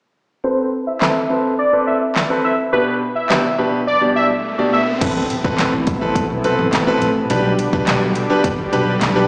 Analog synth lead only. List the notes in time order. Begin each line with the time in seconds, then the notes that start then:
0.44 C5
0.87 E5
1.59 D5
1.87 E5
2.44 E5
2.73 B4
3.15 E5
3.87 D5
4.16 E5
4.73 E5